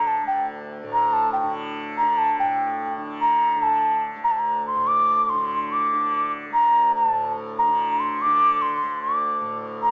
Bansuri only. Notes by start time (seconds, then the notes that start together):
0.07 A5
0.27 G5
0.93 A#5
1.13 A5
1.33 G5
1.98 A#5
2.18 A5
2.39 G5
3.21 A#5
3.63 A5
4.24 A#5
4.31 A5
4.39 A#5
4.67 C6
4.87 D6
5.30 C6
5.72 D6
6.53 A#5
6.96 A5
7.59 A#5
8.00 C6
8.21 D6
8.62 C6
9.02 D6
9.83 A#5